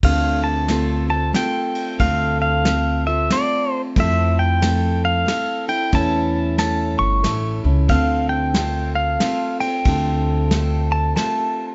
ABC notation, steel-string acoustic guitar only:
X:1
M:3/4
L:1/8
Q:"Swing" 1/4=92
K:Dm
V:1 name="Steel-string acoustic guitar"
[D,A,CFA]2 [A,CFA] [CFA] [A,CFA]2 | [D,A,CFA]2 [A,CFA] [CFA] [A,CFA]2 | [F,A,CEA]2 [A,CA]2 [A,CA] [CEA] | [E,A,^CEA]2 [A,CEA]2 [A,CEA] [CEA] |
[D,A,CFA]2 [A,CFA]2 [A,CFA] [CFA] | [D,A,CFA]2 [A,CFA]2 [A,CFA]2 |]